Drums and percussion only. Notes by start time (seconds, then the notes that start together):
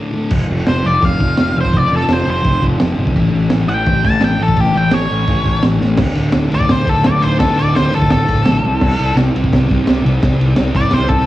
0.30 kick, crash
0.67 snare, crash
1.02 kick, crash
1.20 kick
1.37 snare, crash
1.65 kick
1.73 kick, crash
2.09 snare, crash
2.45 kick, crash
2.62 kick
2.80 snare, crash
3.07 kick
3.16 kick, crash
3.50 snare, crash
3.86 kick, crash
4.05 kick
4.21 snare, crash
4.49 kick
4.57 kick, crash
4.91 snare, crash
5.28 kick, crash
5.46 kick
5.63 snare, crash
5.81 snare
5.98 kick, snare, crash
6.15 ride
6.32 snare, ride
6.52 ride
6.61 kick
6.69 kick, snare, ride
6.87 kick, ride
7.04 snare, ride
7.23 ride
7.40 kick, snare, ride
7.59 ride
7.76 snare, ride
7.94 ride
8.02 kick
8.10 kick, snare, ride
8.29 kick, ride
8.46 snare, ride
8.65 ride
8.81 kick, snare, crash
8.99 ride
9.17 snare, ride
9.36 ride
9.44 kick
9.53 kick, snare, ride
9.70 kick, ride
9.87 snare, ride
10.06 ride
10.23 kick, snare, ride
10.41 ride
10.56 snare, ride
10.75 kick, ride
10.83 kick
10.91 kick, snare, ride
11.09 kick, ride